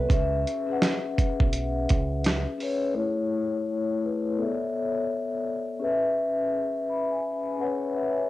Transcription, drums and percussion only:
0.10 kick loud
0.10 closed hi-hat medium
0.47 closed hi-hat medium
0.82 snare loud
0.82 closed hi-hat medium
1.18 kick medium
1.18 closed hi-hat medium
1.40 kick medium
1.53 closed hi-hat medium
1.89 kick medium
1.89 closed hi-hat medium
2.24 snare loud
2.24 closed hi-hat medium
2.60 open hi-hat soft

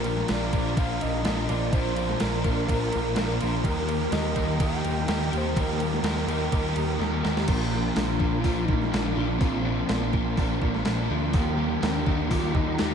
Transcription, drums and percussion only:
0.04 crash medium
0.17 snare soft
0.28 snare loud
0.28 crash medium
0.53 kick medium
0.53 crash medium
0.77 kick loud
0.77 crash medium
1.01 crash medium
1.25 snare loud
1.25 crash medium
1.37 snare soft
1.49 crash medium
1.73 kick loud
1.73 crash medium
1.96 crash medium
2.09 snare soft
2.20 snare loud
2.20 crash medium
2.44 kick medium
2.44 crash medium
2.69 kick loud
2.69 crash medium
2.93 crash medium
3.16 snare loud
3.16 crash medium
3.41 crash medium
3.64 kick loud
3.64 crash medium
3.89 crash medium
4.12 snare loud
4.12 crash medium
4.36 kick medium
4.36 crash medium
4.60 kick loud
4.60 crash loud
4.85 crash medium
5.08 snare loud
5.08 crash medium
5.33 crash medium
5.56 kick loud
5.56 crash medium
5.80 crash medium
5.92 snare soft
6.04 snare loud
6.04 crash medium
6.29 crash medium
6.52 kick loud
6.52 crash medium
6.76 crash medium
7.02 snare medium
7.25 snare medium
7.37 snare medium
7.48 kick loud
7.48 open hi-hat medium
7.48 crash loud
7.96 snare loud
7.96 open hi-hat medium
8.20 kick medium
8.44 kick loud
8.44 open hi-hat medium
8.68 kick medium
8.82 snare soft
8.94 snare loud
8.94 open hi-hat medium
9.06 snare soft
9.41 kick loud
9.41 open hi-hat medium
9.89 snare loud
9.89 open hi-hat medium
10.13 kick medium
10.37 kick loud
10.37 open hi-hat medium
10.62 kick medium
10.74 snare soft
10.85 snare loud
10.85 open hi-hat medium
10.98 snare soft
11.33 kick loud
11.33 open hi-hat medium
11.83 snare loud
11.83 open hi-hat medium
12.07 kick medium
12.31 kick medium
12.31 open hi-hat medium
12.55 kick medium
12.79 snare loud
12.79 open hi-hat medium

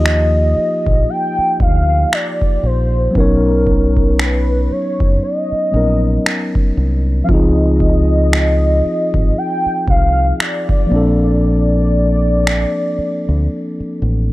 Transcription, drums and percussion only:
0.06 finger snap loud
0.87 kick medium
1.60 kick medium
2.13 finger snap loud
2.42 kick medium
3.15 kick loud
3.67 kick medium
3.97 kick medium
4.19 finger snap loud
5.00 kick medium
6.26 finger snap loud
6.55 kick medium
7.29 kick loud
7.80 kick medium
8.33 finger snap loud
9.14 kick medium
9.88 kick medium
10.40 finger snap loud
10.69 kick medium
12.47 finger snap loud

